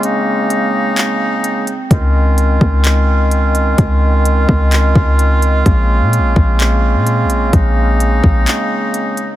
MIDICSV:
0, 0, Header, 1, 4, 480
1, 0, Start_track
1, 0, Tempo, 468750
1, 34, Time_signature, 4, 2, 24, 8
1, 9585, End_track
2, 0, Start_track
2, 0, Title_t, "Woodwind section"
2, 0, Program_c, 0, 71
2, 0, Note_on_c, 0, 49, 82
2, 0, Note_on_c, 0, 56, 74
2, 0, Note_on_c, 0, 58, 76
2, 0, Note_on_c, 0, 60, 74
2, 35, Note_on_c, 0, 63, 90
2, 1781, Note_off_c, 0, 49, 0
2, 1781, Note_off_c, 0, 56, 0
2, 1781, Note_off_c, 0, 58, 0
2, 1781, Note_off_c, 0, 63, 0
2, 1955, Note_on_c, 0, 51, 80
2, 1955, Note_on_c, 0, 56, 75
2, 1955, Note_on_c, 0, 61, 70
2, 1956, Note_on_c, 0, 65, 84
2, 5753, Note_off_c, 0, 60, 0
2, 5756, Note_off_c, 0, 51, 0
2, 5756, Note_off_c, 0, 61, 0
2, 5794, Note_on_c, 0, 60, 72
2, 5795, Note_on_c, 0, 58, 72
2, 5796, Note_on_c, 0, 49, 78
2, 7674, Note_off_c, 0, 65, 0
2, 7714, Note_on_c, 0, 63, 85
2, 9585, Note_off_c, 0, 49, 0
2, 9585, Note_off_c, 0, 56, 0
2, 9585, Note_off_c, 0, 58, 0
2, 9585, Note_off_c, 0, 60, 0
2, 9585, Note_off_c, 0, 63, 0
2, 9585, End_track
3, 0, Start_track
3, 0, Title_t, "808-style bass"
3, 0, Program_c, 1, 38
3, 1953, Note_on_c, 1, 37, 112
3, 2645, Note_off_c, 1, 37, 0
3, 2674, Note_on_c, 1, 37, 107
3, 3833, Note_off_c, 1, 37, 0
3, 3874, Note_on_c, 1, 37, 114
3, 4565, Note_off_c, 1, 37, 0
3, 4595, Note_on_c, 1, 37, 107
3, 5055, Note_off_c, 1, 37, 0
3, 5074, Note_on_c, 1, 37, 105
3, 5765, Note_off_c, 1, 37, 0
3, 5795, Note_on_c, 1, 34, 106
3, 6153, Note_on_c, 1, 46, 100
3, 6168, Note_off_c, 1, 34, 0
3, 6334, Note_on_c, 1, 34, 96
3, 6350, Note_off_c, 1, 46, 0
3, 6505, Note_off_c, 1, 34, 0
3, 6515, Note_on_c, 1, 34, 108
3, 7115, Note_on_c, 1, 46, 97
3, 7131, Note_off_c, 1, 34, 0
3, 7415, Note_on_c, 1, 34, 93
3, 7430, Note_off_c, 1, 46, 0
3, 7699, Note_off_c, 1, 34, 0
3, 7713, Note_on_c, 1, 34, 110
3, 8404, Note_off_c, 1, 34, 0
3, 8434, Note_on_c, 1, 34, 102
3, 8664, Note_off_c, 1, 34, 0
3, 9585, End_track
4, 0, Start_track
4, 0, Title_t, "Drums"
4, 34, Note_on_c, 9, 42, 78
4, 136, Note_off_c, 9, 42, 0
4, 515, Note_on_c, 9, 42, 76
4, 618, Note_off_c, 9, 42, 0
4, 994, Note_on_c, 9, 42, 76
4, 1002, Note_on_c, 9, 39, 111
4, 1096, Note_off_c, 9, 42, 0
4, 1104, Note_off_c, 9, 39, 0
4, 1475, Note_on_c, 9, 42, 78
4, 1577, Note_off_c, 9, 42, 0
4, 1713, Note_on_c, 9, 42, 58
4, 1815, Note_off_c, 9, 42, 0
4, 1953, Note_on_c, 9, 36, 107
4, 1953, Note_on_c, 9, 42, 77
4, 2056, Note_off_c, 9, 36, 0
4, 2056, Note_off_c, 9, 42, 0
4, 2435, Note_on_c, 9, 42, 83
4, 2538, Note_off_c, 9, 42, 0
4, 2673, Note_on_c, 9, 36, 95
4, 2776, Note_off_c, 9, 36, 0
4, 2912, Note_on_c, 9, 42, 72
4, 2920, Note_on_c, 9, 39, 109
4, 3014, Note_off_c, 9, 42, 0
4, 3022, Note_off_c, 9, 39, 0
4, 3394, Note_on_c, 9, 42, 82
4, 3496, Note_off_c, 9, 42, 0
4, 3633, Note_on_c, 9, 42, 61
4, 3735, Note_off_c, 9, 42, 0
4, 3873, Note_on_c, 9, 42, 74
4, 3874, Note_on_c, 9, 36, 110
4, 3975, Note_off_c, 9, 42, 0
4, 3976, Note_off_c, 9, 36, 0
4, 4357, Note_on_c, 9, 42, 80
4, 4459, Note_off_c, 9, 42, 0
4, 4595, Note_on_c, 9, 36, 90
4, 4697, Note_off_c, 9, 36, 0
4, 4832, Note_on_c, 9, 42, 76
4, 4840, Note_on_c, 9, 39, 112
4, 4935, Note_off_c, 9, 42, 0
4, 4943, Note_off_c, 9, 39, 0
4, 5074, Note_on_c, 9, 36, 89
4, 5176, Note_off_c, 9, 36, 0
4, 5315, Note_on_c, 9, 42, 77
4, 5418, Note_off_c, 9, 42, 0
4, 5554, Note_on_c, 9, 42, 60
4, 5657, Note_off_c, 9, 42, 0
4, 5794, Note_on_c, 9, 36, 110
4, 5795, Note_on_c, 9, 42, 76
4, 5897, Note_off_c, 9, 36, 0
4, 5898, Note_off_c, 9, 42, 0
4, 6278, Note_on_c, 9, 42, 82
4, 6381, Note_off_c, 9, 42, 0
4, 6515, Note_on_c, 9, 36, 95
4, 6617, Note_off_c, 9, 36, 0
4, 6756, Note_on_c, 9, 42, 77
4, 6764, Note_on_c, 9, 39, 110
4, 6858, Note_off_c, 9, 42, 0
4, 6866, Note_off_c, 9, 39, 0
4, 7235, Note_on_c, 9, 42, 75
4, 7337, Note_off_c, 9, 42, 0
4, 7472, Note_on_c, 9, 42, 60
4, 7575, Note_off_c, 9, 42, 0
4, 7713, Note_on_c, 9, 36, 109
4, 7713, Note_on_c, 9, 42, 76
4, 7815, Note_off_c, 9, 36, 0
4, 7815, Note_off_c, 9, 42, 0
4, 8196, Note_on_c, 9, 42, 78
4, 8298, Note_off_c, 9, 42, 0
4, 8434, Note_on_c, 9, 36, 91
4, 8536, Note_off_c, 9, 36, 0
4, 8674, Note_on_c, 9, 42, 75
4, 8681, Note_on_c, 9, 39, 104
4, 8776, Note_off_c, 9, 42, 0
4, 8784, Note_off_c, 9, 39, 0
4, 9155, Note_on_c, 9, 42, 78
4, 9257, Note_off_c, 9, 42, 0
4, 9394, Note_on_c, 9, 42, 57
4, 9496, Note_off_c, 9, 42, 0
4, 9585, End_track
0, 0, End_of_file